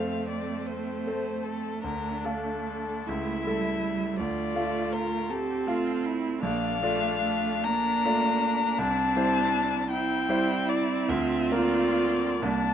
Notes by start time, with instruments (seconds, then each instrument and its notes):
Already playing: grand piano F2 A3 A4 C5, cello A3, viola C4, violin F5
0.28 violin D5
0.67 violin C5
1.07 grand piano A3 A4 C5
1.43 violin A4
1.83 grand piano D2, viola D4, violin A#4
2.25 grand piano A3 A4 F5, violin A4
3.07 grand piano C#2, cello A3, viola E4, violin E5
3.45 cello G3, grand piano A3 A4 E5
3.82 cello G3
4.19 grand piano D2, cello A3, viola F4, violin D5
4.55 grand piano A3 F4 F5
4.92 violin A#4
5.29 cello C4, viola G4, violin A4
5.67 grand piano A3 F4 F5, viola F4
6.05 viola E4
6.42 grand piano A#1, cello A#3, viola D4, violin F5
6.82 cello A3, grand piano A3 F4 D5
7.24 cello A3
7.63 cello A#3, viola D4, violin A#5
8.05 grand piano A3 F4 D5
8.78 grand piano C2, cello C4, violin A5
9.16 grand piano G3 E4 C5
9.91 cello C4, viola E4, violin G5
10.29 grand piano G3 E4 C5
10.69 violin D5
11.09 grand piano D2, viola F4, violin E5
11.51 grand piano A#3 F4 A#4, violin D5
12.42 grand piano C2, cello A#3, viola D4, violin A5